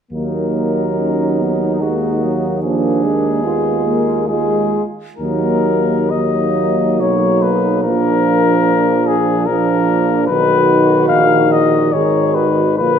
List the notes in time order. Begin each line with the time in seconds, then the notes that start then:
0.11 D#2 F#3 A#3 D#4 A#4
0.97 C#4
1.38 B3
1.81 G#3 A#3 F#4
2.24 F#3
2.62 F3 A#3 D4 G#4
3.04 G#3
3.42 B3 F4
3.85 A#3
4.28 G#3 F4 G#4
5.17 D#2 F#3 A#3 D#4 A#4
6.11 F#3 A#3 D#4 D#5
7.00 B1 C#5
7.42 B4
7.82 A#1 F3 A#3 D4 A#4
9.07 G#4
9.46 F3 A#3 D4 A#4
10.27 B1 D#3 D#4 F#4 B4
11.08 A#1 F5
11.52 D#5
11.93 G#1 D#3 D#4 G#4 C#5
12.35 F#4 B4
12.78 A#1 D3 A#3 F4 B4